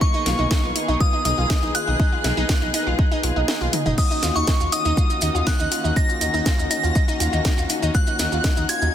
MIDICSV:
0, 0, Header, 1, 7, 480
1, 0, Start_track
1, 0, Key_signature, -6, "minor"
1, 0, Tempo, 495868
1, 13, Time_signature, 4, 2, 24, 8
1, 8658, End_track
2, 0, Start_track
2, 0, Title_t, "Digital synth lead"
2, 0, Program_c, 0, 84
2, 15, Note_on_c, 0, 85, 104
2, 935, Note_off_c, 0, 85, 0
2, 974, Note_on_c, 0, 87, 102
2, 1197, Note_off_c, 0, 87, 0
2, 1212, Note_on_c, 0, 87, 113
2, 1659, Note_off_c, 0, 87, 0
2, 1693, Note_on_c, 0, 90, 121
2, 3574, Note_off_c, 0, 90, 0
2, 3851, Note_on_c, 0, 87, 99
2, 4191, Note_off_c, 0, 87, 0
2, 4217, Note_on_c, 0, 85, 89
2, 4567, Note_off_c, 0, 85, 0
2, 4573, Note_on_c, 0, 87, 106
2, 5288, Note_off_c, 0, 87, 0
2, 5294, Note_on_c, 0, 90, 106
2, 5740, Note_off_c, 0, 90, 0
2, 5772, Note_on_c, 0, 94, 120
2, 6453, Note_off_c, 0, 94, 0
2, 6493, Note_on_c, 0, 94, 109
2, 7414, Note_off_c, 0, 94, 0
2, 7695, Note_on_c, 0, 90, 117
2, 8410, Note_off_c, 0, 90, 0
2, 8416, Note_on_c, 0, 92, 119
2, 8651, Note_off_c, 0, 92, 0
2, 8658, End_track
3, 0, Start_track
3, 0, Title_t, "Synth bell"
3, 0, Program_c, 1, 98
3, 13, Note_on_c, 1, 85, 92
3, 934, Note_off_c, 1, 85, 0
3, 974, Note_on_c, 1, 87, 99
3, 1196, Note_off_c, 1, 87, 0
3, 1212, Note_on_c, 1, 87, 100
3, 1659, Note_off_c, 1, 87, 0
3, 1692, Note_on_c, 1, 90, 104
3, 3573, Note_off_c, 1, 90, 0
3, 3853, Note_on_c, 1, 87, 86
3, 4192, Note_off_c, 1, 87, 0
3, 4217, Note_on_c, 1, 85, 92
3, 4573, Note_on_c, 1, 87, 97
3, 4583, Note_off_c, 1, 85, 0
3, 5295, Note_on_c, 1, 90, 97
3, 5315, Note_off_c, 1, 87, 0
3, 5740, Note_off_c, 1, 90, 0
3, 5774, Note_on_c, 1, 94, 114
3, 6455, Note_off_c, 1, 94, 0
3, 6492, Note_on_c, 1, 94, 103
3, 7413, Note_off_c, 1, 94, 0
3, 7692, Note_on_c, 1, 90, 105
3, 8414, Note_on_c, 1, 92, 112
3, 8434, Note_off_c, 1, 90, 0
3, 8658, Note_off_c, 1, 92, 0
3, 8658, End_track
4, 0, Start_track
4, 0, Title_t, "Synth pluck"
4, 0, Program_c, 2, 84
4, 12, Note_on_c, 2, 63, 87
4, 84, Note_off_c, 2, 63, 0
4, 136, Note_on_c, 2, 63, 103
4, 181, Note_off_c, 2, 63, 0
4, 252, Note_on_c, 2, 65, 82
4, 281, Note_off_c, 2, 65, 0
4, 375, Note_on_c, 2, 63, 78
4, 443, Note_off_c, 2, 63, 0
4, 491, Note_on_c, 2, 63, 108
4, 540, Note_off_c, 2, 63, 0
4, 616, Note_on_c, 2, 65, 77
4, 643, Note_off_c, 2, 65, 0
4, 730, Note_on_c, 2, 63, 77
4, 804, Note_off_c, 2, 63, 0
4, 855, Note_on_c, 2, 63, 99
4, 901, Note_off_c, 2, 63, 0
4, 971, Note_on_c, 2, 65, 85
4, 1001, Note_off_c, 2, 65, 0
4, 1095, Note_on_c, 2, 63, 83
4, 1163, Note_off_c, 2, 63, 0
4, 1210, Note_on_c, 2, 63, 108
4, 1259, Note_off_c, 2, 63, 0
4, 1334, Note_on_c, 2, 65, 76
4, 1363, Note_off_c, 2, 65, 0
4, 1450, Note_on_c, 2, 63, 84
4, 1523, Note_off_c, 2, 63, 0
4, 1574, Note_on_c, 2, 63, 102
4, 1620, Note_off_c, 2, 63, 0
4, 1691, Note_on_c, 2, 65, 74
4, 1721, Note_off_c, 2, 65, 0
4, 1815, Note_on_c, 2, 63, 78
4, 1883, Note_off_c, 2, 63, 0
4, 1930, Note_on_c, 2, 63, 105
4, 1979, Note_off_c, 2, 63, 0
4, 2055, Note_on_c, 2, 65, 72
4, 2083, Note_off_c, 2, 65, 0
4, 2171, Note_on_c, 2, 63, 74
4, 2244, Note_off_c, 2, 63, 0
4, 2295, Note_on_c, 2, 63, 102
4, 2341, Note_off_c, 2, 63, 0
4, 2411, Note_on_c, 2, 65, 82
4, 2441, Note_off_c, 2, 65, 0
4, 2536, Note_on_c, 2, 63, 78
4, 2603, Note_off_c, 2, 63, 0
4, 2651, Note_on_c, 2, 63, 102
4, 2700, Note_off_c, 2, 63, 0
4, 2776, Note_on_c, 2, 65, 75
4, 2803, Note_off_c, 2, 65, 0
4, 2891, Note_on_c, 2, 63, 83
4, 2964, Note_off_c, 2, 63, 0
4, 3015, Note_on_c, 2, 63, 109
4, 3061, Note_off_c, 2, 63, 0
4, 3130, Note_on_c, 2, 65, 78
4, 3160, Note_off_c, 2, 65, 0
4, 3255, Note_on_c, 2, 63, 75
4, 3323, Note_off_c, 2, 63, 0
4, 3370, Note_on_c, 2, 63, 104
4, 3420, Note_off_c, 2, 63, 0
4, 3495, Note_on_c, 2, 65, 83
4, 3523, Note_off_c, 2, 65, 0
4, 3611, Note_on_c, 2, 63, 74
4, 3684, Note_off_c, 2, 63, 0
4, 3735, Note_on_c, 2, 63, 108
4, 3780, Note_off_c, 2, 63, 0
4, 3851, Note_on_c, 2, 63, 91
4, 3924, Note_off_c, 2, 63, 0
4, 3976, Note_on_c, 2, 63, 102
4, 4021, Note_off_c, 2, 63, 0
4, 4091, Note_on_c, 2, 65, 78
4, 4121, Note_off_c, 2, 65, 0
4, 4215, Note_on_c, 2, 63, 75
4, 4283, Note_off_c, 2, 63, 0
4, 4331, Note_on_c, 2, 63, 101
4, 4380, Note_off_c, 2, 63, 0
4, 4456, Note_on_c, 2, 65, 78
4, 4483, Note_off_c, 2, 65, 0
4, 4571, Note_on_c, 2, 63, 79
4, 4644, Note_off_c, 2, 63, 0
4, 4697, Note_on_c, 2, 63, 103
4, 4742, Note_off_c, 2, 63, 0
4, 4812, Note_on_c, 2, 65, 85
4, 4841, Note_off_c, 2, 65, 0
4, 4936, Note_on_c, 2, 63, 78
4, 5003, Note_off_c, 2, 63, 0
4, 5052, Note_on_c, 2, 63, 102
4, 5100, Note_off_c, 2, 63, 0
4, 5177, Note_on_c, 2, 65, 75
4, 5204, Note_off_c, 2, 65, 0
4, 5291, Note_on_c, 2, 63, 86
4, 5364, Note_off_c, 2, 63, 0
4, 5417, Note_on_c, 2, 63, 101
4, 5461, Note_off_c, 2, 63, 0
4, 5531, Note_on_c, 2, 65, 76
4, 5561, Note_off_c, 2, 65, 0
4, 5657, Note_on_c, 2, 63, 81
4, 5723, Note_off_c, 2, 63, 0
4, 5771, Note_on_c, 2, 63, 103
4, 5820, Note_off_c, 2, 63, 0
4, 5895, Note_on_c, 2, 65, 76
4, 5923, Note_off_c, 2, 65, 0
4, 6011, Note_on_c, 2, 63, 78
4, 6084, Note_off_c, 2, 63, 0
4, 6135, Note_on_c, 2, 63, 102
4, 6181, Note_off_c, 2, 63, 0
4, 6251, Note_on_c, 2, 65, 86
4, 6281, Note_off_c, 2, 65, 0
4, 6374, Note_on_c, 2, 63, 78
4, 6442, Note_off_c, 2, 63, 0
4, 6491, Note_on_c, 2, 63, 100
4, 6540, Note_off_c, 2, 63, 0
4, 6615, Note_on_c, 2, 65, 75
4, 6643, Note_off_c, 2, 65, 0
4, 6731, Note_on_c, 2, 63, 89
4, 6804, Note_off_c, 2, 63, 0
4, 6855, Note_on_c, 2, 63, 107
4, 6900, Note_off_c, 2, 63, 0
4, 6970, Note_on_c, 2, 65, 77
4, 7000, Note_off_c, 2, 65, 0
4, 7094, Note_on_c, 2, 63, 77
4, 7163, Note_off_c, 2, 63, 0
4, 7210, Note_on_c, 2, 63, 100
4, 7259, Note_off_c, 2, 63, 0
4, 7335, Note_on_c, 2, 65, 77
4, 7363, Note_off_c, 2, 65, 0
4, 7450, Note_on_c, 2, 63, 76
4, 7523, Note_off_c, 2, 63, 0
4, 7575, Note_on_c, 2, 63, 103
4, 7620, Note_off_c, 2, 63, 0
4, 7690, Note_on_c, 2, 65, 84
4, 7720, Note_off_c, 2, 65, 0
4, 7815, Note_on_c, 2, 63, 76
4, 7883, Note_off_c, 2, 63, 0
4, 7931, Note_on_c, 2, 63, 105
4, 7980, Note_off_c, 2, 63, 0
4, 8056, Note_on_c, 2, 65, 76
4, 8083, Note_off_c, 2, 65, 0
4, 8170, Note_on_c, 2, 63, 91
4, 8244, Note_off_c, 2, 63, 0
4, 8295, Note_on_c, 2, 63, 103
4, 8341, Note_off_c, 2, 63, 0
4, 8410, Note_on_c, 2, 65, 76
4, 8440, Note_off_c, 2, 65, 0
4, 8535, Note_on_c, 2, 63, 77
4, 8603, Note_off_c, 2, 63, 0
4, 8658, End_track
5, 0, Start_track
5, 0, Title_t, "String section"
5, 0, Program_c, 3, 48
5, 0, Note_on_c, 3, 51, 76
5, 0, Note_on_c, 3, 58, 72
5, 0, Note_on_c, 3, 59, 72
5, 12, Note_on_c, 3, 68, 83
5, 3813, Note_off_c, 3, 51, 0
5, 3814, Note_off_c, 3, 58, 0
5, 3814, Note_off_c, 3, 59, 0
5, 3814, Note_off_c, 3, 68, 0
5, 3852, Note_on_c, 3, 51, 80
5, 3853, Note_on_c, 3, 61, 69
5, 3854, Note_on_c, 3, 58, 70
5, 3854, Note_on_c, 3, 66, 89
5, 8658, Note_off_c, 3, 51, 0
5, 8658, Note_off_c, 3, 58, 0
5, 8658, Note_off_c, 3, 61, 0
5, 8658, Note_off_c, 3, 66, 0
5, 8658, End_track
6, 0, Start_track
6, 0, Title_t, "Detuned saw bass"
6, 0, Program_c, 4, 39
6, 252, Note_on_c, 4, 35, 98
6, 328, Note_off_c, 4, 35, 0
6, 378, Note_on_c, 4, 35, 82
6, 447, Note_off_c, 4, 35, 0
6, 617, Note_on_c, 4, 35, 81
6, 687, Note_off_c, 4, 35, 0
6, 857, Note_on_c, 4, 35, 84
6, 927, Note_off_c, 4, 35, 0
6, 1211, Note_on_c, 4, 35, 96
6, 1287, Note_off_c, 4, 35, 0
6, 1336, Note_on_c, 4, 35, 85
6, 1407, Note_off_c, 4, 35, 0
6, 1576, Note_on_c, 4, 35, 81
6, 1647, Note_off_c, 4, 35, 0
6, 1817, Note_on_c, 4, 35, 77
6, 1887, Note_off_c, 4, 35, 0
6, 2173, Note_on_c, 4, 35, 97
6, 2248, Note_off_c, 4, 35, 0
6, 2298, Note_on_c, 4, 35, 85
6, 2368, Note_off_c, 4, 35, 0
6, 2537, Note_on_c, 4, 35, 84
6, 2607, Note_off_c, 4, 35, 0
6, 2777, Note_on_c, 4, 35, 83
6, 2847, Note_off_c, 4, 35, 0
6, 3132, Note_on_c, 4, 35, 91
6, 3208, Note_off_c, 4, 35, 0
6, 3256, Note_on_c, 4, 35, 90
6, 3327, Note_off_c, 4, 35, 0
6, 3496, Note_on_c, 4, 35, 79
6, 3566, Note_off_c, 4, 35, 0
6, 3737, Note_on_c, 4, 30, 80
6, 3807, Note_off_c, 4, 30, 0
6, 4092, Note_on_c, 4, 39, 93
6, 4168, Note_off_c, 4, 39, 0
6, 4217, Note_on_c, 4, 39, 81
6, 4287, Note_off_c, 4, 39, 0
6, 4457, Note_on_c, 4, 39, 82
6, 4527, Note_off_c, 4, 39, 0
6, 4697, Note_on_c, 4, 39, 84
6, 4767, Note_off_c, 4, 39, 0
6, 5052, Note_on_c, 4, 39, 88
6, 5128, Note_off_c, 4, 39, 0
6, 5176, Note_on_c, 4, 39, 88
6, 5247, Note_off_c, 4, 39, 0
6, 5417, Note_on_c, 4, 39, 79
6, 5487, Note_off_c, 4, 39, 0
6, 5658, Note_on_c, 4, 39, 81
6, 5728, Note_off_c, 4, 39, 0
6, 6013, Note_on_c, 4, 39, 94
6, 6088, Note_off_c, 4, 39, 0
6, 6138, Note_on_c, 4, 39, 86
6, 6207, Note_off_c, 4, 39, 0
6, 6378, Note_on_c, 4, 39, 83
6, 6448, Note_off_c, 4, 39, 0
6, 6618, Note_on_c, 4, 39, 83
6, 6688, Note_off_c, 4, 39, 0
6, 6972, Note_on_c, 4, 39, 94
6, 7048, Note_off_c, 4, 39, 0
6, 7097, Note_on_c, 4, 39, 88
6, 7167, Note_off_c, 4, 39, 0
6, 7337, Note_on_c, 4, 39, 75
6, 7407, Note_off_c, 4, 39, 0
6, 7577, Note_on_c, 4, 39, 80
6, 7647, Note_off_c, 4, 39, 0
6, 7933, Note_on_c, 4, 39, 93
6, 8008, Note_off_c, 4, 39, 0
6, 8058, Note_on_c, 4, 39, 86
6, 8128, Note_off_c, 4, 39, 0
6, 8297, Note_on_c, 4, 39, 82
6, 8367, Note_off_c, 4, 39, 0
6, 8537, Note_on_c, 4, 39, 83
6, 8607, Note_off_c, 4, 39, 0
6, 8658, End_track
7, 0, Start_track
7, 0, Title_t, "Drums"
7, 12, Note_on_c, 9, 36, 113
7, 109, Note_off_c, 9, 36, 0
7, 252, Note_on_c, 9, 38, 58
7, 253, Note_on_c, 9, 46, 98
7, 349, Note_off_c, 9, 38, 0
7, 350, Note_off_c, 9, 46, 0
7, 492, Note_on_c, 9, 36, 112
7, 492, Note_on_c, 9, 38, 119
7, 588, Note_off_c, 9, 38, 0
7, 589, Note_off_c, 9, 36, 0
7, 732, Note_on_c, 9, 46, 98
7, 829, Note_off_c, 9, 46, 0
7, 972, Note_on_c, 9, 36, 118
7, 1069, Note_off_c, 9, 36, 0
7, 1212, Note_on_c, 9, 46, 104
7, 1309, Note_off_c, 9, 46, 0
7, 1451, Note_on_c, 9, 38, 121
7, 1452, Note_on_c, 9, 36, 115
7, 1548, Note_off_c, 9, 38, 0
7, 1549, Note_off_c, 9, 36, 0
7, 1692, Note_on_c, 9, 46, 105
7, 1789, Note_off_c, 9, 46, 0
7, 1932, Note_on_c, 9, 36, 122
7, 2029, Note_off_c, 9, 36, 0
7, 2171, Note_on_c, 9, 38, 62
7, 2172, Note_on_c, 9, 46, 102
7, 2268, Note_off_c, 9, 38, 0
7, 2269, Note_off_c, 9, 46, 0
7, 2411, Note_on_c, 9, 38, 124
7, 2412, Note_on_c, 9, 36, 113
7, 2508, Note_off_c, 9, 38, 0
7, 2509, Note_off_c, 9, 36, 0
7, 2652, Note_on_c, 9, 46, 105
7, 2749, Note_off_c, 9, 46, 0
7, 2892, Note_on_c, 9, 36, 116
7, 2989, Note_off_c, 9, 36, 0
7, 3131, Note_on_c, 9, 46, 107
7, 3228, Note_off_c, 9, 46, 0
7, 3370, Note_on_c, 9, 38, 127
7, 3467, Note_off_c, 9, 38, 0
7, 3612, Note_on_c, 9, 46, 112
7, 3612, Note_on_c, 9, 48, 66
7, 3708, Note_off_c, 9, 46, 0
7, 3708, Note_off_c, 9, 48, 0
7, 3736, Note_on_c, 9, 47, 78
7, 3833, Note_off_c, 9, 47, 0
7, 3851, Note_on_c, 9, 49, 79
7, 3852, Note_on_c, 9, 36, 117
7, 3859, Note_on_c, 9, 70, 54
7, 3948, Note_off_c, 9, 49, 0
7, 3949, Note_off_c, 9, 36, 0
7, 3956, Note_off_c, 9, 70, 0
7, 3981, Note_on_c, 9, 70, 37
7, 4078, Note_off_c, 9, 70, 0
7, 4091, Note_on_c, 9, 38, 67
7, 4092, Note_on_c, 9, 46, 107
7, 4096, Note_on_c, 9, 70, 92
7, 4188, Note_off_c, 9, 38, 0
7, 4189, Note_off_c, 9, 46, 0
7, 4193, Note_off_c, 9, 70, 0
7, 4223, Note_on_c, 9, 70, 37
7, 4320, Note_off_c, 9, 70, 0
7, 4329, Note_on_c, 9, 70, 56
7, 4331, Note_on_c, 9, 38, 119
7, 4333, Note_on_c, 9, 36, 114
7, 4426, Note_off_c, 9, 70, 0
7, 4428, Note_off_c, 9, 38, 0
7, 4430, Note_off_c, 9, 36, 0
7, 4455, Note_on_c, 9, 70, 38
7, 4551, Note_off_c, 9, 70, 0
7, 4573, Note_on_c, 9, 46, 107
7, 4574, Note_on_c, 9, 70, 84
7, 4669, Note_off_c, 9, 46, 0
7, 4670, Note_off_c, 9, 70, 0
7, 4694, Note_on_c, 9, 70, 41
7, 4791, Note_off_c, 9, 70, 0
7, 4813, Note_on_c, 9, 36, 121
7, 4816, Note_on_c, 9, 70, 50
7, 4910, Note_off_c, 9, 36, 0
7, 4913, Note_off_c, 9, 70, 0
7, 4937, Note_on_c, 9, 70, 36
7, 5034, Note_off_c, 9, 70, 0
7, 5048, Note_on_c, 9, 70, 100
7, 5053, Note_on_c, 9, 46, 108
7, 5144, Note_off_c, 9, 70, 0
7, 5150, Note_off_c, 9, 46, 0
7, 5183, Note_on_c, 9, 70, 38
7, 5280, Note_off_c, 9, 70, 0
7, 5292, Note_on_c, 9, 70, 52
7, 5293, Note_on_c, 9, 36, 122
7, 5293, Note_on_c, 9, 38, 127
7, 5389, Note_off_c, 9, 38, 0
7, 5389, Note_off_c, 9, 70, 0
7, 5390, Note_off_c, 9, 36, 0
7, 5419, Note_on_c, 9, 70, 35
7, 5515, Note_off_c, 9, 70, 0
7, 5534, Note_on_c, 9, 46, 115
7, 5535, Note_on_c, 9, 70, 94
7, 5631, Note_off_c, 9, 46, 0
7, 5632, Note_off_c, 9, 70, 0
7, 5660, Note_on_c, 9, 70, 38
7, 5757, Note_off_c, 9, 70, 0
7, 5773, Note_on_c, 9, 36, 124
7, 5778, Note_on_c, 9, 70, 58
7, 5870, Note_off_c, 9, 36, 0
7, 5875, Note_off_c, 9, 70, 0
7, 5897, Note_on_c, 9, 70, 41
7, 5994, Note_off_c, 9, 70, 0
7, 6013, Note_on_c, 9, 46, 113
7, 6017, Note_on_c, 9, 70, 87
7, 6110, Note_off_c, 9, 46, 0
7, 6114, Note_off_c, 9, 70, 0
7, 6137, Note_on_c, 9, 70, 36
7, 6234, Note_off_c, 9, 70, 0
7, 6253, Note_on_c, 9, 36, 124
7, 6253, Note_on_c, 9, 38, 121
7, 6253, Note_on_c, 9, 70, 54
7, 6349, Note_off_c, 9, 70, 0
7, 6350, Note_off_c, 9, 36, 0
7, 6350, Note_off_c, 9, 38, 0
7, 6383, Note_on_c, 9, 70, 43
7, 6480, Note_off_c, 9, 70, 0
7, 6493, Note_on_c, 9, 46, 110
7, 6497, Note_on_c, 9, 70, 92
7, 6590, Note_off_c, 9, 46, 0
7, 6594, Note_off_c, 9, 70, 0
7, 6616, Note_on_c, 9, 70, 40
7, 6713, Note_off_c, 9, 70, 0
7, 6731, Note_on_c, 9, 70, 51
7, 6733, Note_on_c, 9, 36, 127
7, 6828, Note_off_c, 9, 70, 0
7, 6830, Note_off_c, 9, 36, 0
7, 6858, Note_on_c, 9, 70, 42
7, 6954, Note_off_c, 9, 70, 0
7, 6972, Note_on_c, 9, 46, 111
7, 6981, Note_on_c, 9, 70, 90
7, 7069, Note_off_c, 9, 46, 0
7, 7078, Note_off_c, 9, 70, 0
7, 7094, Note_on_c, 9, 70, 40
7, 7191, Note_off_c, 9, 70, 0
7, 7210, Note_on_c, 9, 70, 52
7, 7211, Note_on_c, 9, 38, 127
7, 7213, Note_on_c, 9, 36, 122
7, 7307, Note_off_c, 9, 70, 0
7, 7308, Note_off_c, 9, 38, 0
7, 7309, Note_off_c, 9, 36, 0
7, 7341, Note_on_c, 9, 70, 41
7, 7438, Note_off_c, 9, 70, 0
7, 7449, Note_on_c, 9, 70, 96
7, 7452, Note_on_c, 9, 46, 122
7, 7546, Note_off_c, 9, 70, 0
7, 7549, Note_off_c, 9, 46, 0
7, 7578, Note_on_c, 9, 70, 43
7, 7674, Note_off_c, 9, 70, 0
7, 7691, Note_on_c, 9, 70, 55
7, 7692, Note_on_c, 9, 36, 127
7, 7788, Note_off_c, 9, 70, 0
7, 7789, Note_off_c, 9, 36, 0
7, 7811, Note_on_c, 9, 70, 41
7, 7908, Note_off_c, 9, 70, 0
7, 7929, Note_on_c, 9, 70, 90
7, 7931, Note_on_c, 9, 38, 60
7, 7932, Note_on_c, 9, 46, 111
7, 8026, Note_off_c, 9, 70, 0
7, 8028, Note_off_c, 9, 38, 0
7, 8029, Note_off_c, 9, 46, 0
7, 8055, Note_on_c, 9, 70, 39
7, 8152, Note_off_c, 9, 70, 0
7, 8169, Note_on_c, 9, 70, 61
7, 8171, Note_on_c, 9, 38, 123
7, 8173, Note_on_c, 9, 36, 127
7, 8266, Note_off_c, 9, 70, 0
7, 8268, Note_off_c, 9, 38, 0
7, 8270, Note_off_c, 9, 36, 0
7, 8295, Note_on_c, 9, 70, 39
7, 8392, Note_off_c, 9, 70, 0
7, 8412, Note_on_c, 9, 46, 120
7, 8417, Note_on_c, 9, 70, 106
7, 8509, Note_off_c, 9, 46, 0
7, 8514, Note_off_c, 9, 70, 0
7, 8537, Note_on_c, 9, 70, 41
7, 8633, Note_off_c, 9, 70, 0
7, 8658, End_track
0, 0, End_of_file